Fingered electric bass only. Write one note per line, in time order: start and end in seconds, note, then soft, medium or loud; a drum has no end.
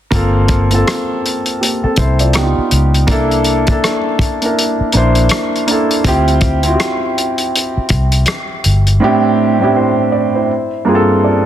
0.12 0.82 G1 medium
1.84 muted fingered electric bass stroke soft
1.98 2.35 C2 medium
2.35 2.55 C#2 medium
2.58 muted fingered electric bass stroke soft
2.72 3.09 C#2 medium
3.09 3.79 C2 medium
4.80 muted fingered electric bass stroke soft
4.95 5.28 A#1 medium
6.05 6.75 D2 medium
7.77 muted fingered electric bass stroke soft
7.91 8.24 C2 medium
8.66 8.99 G1 medium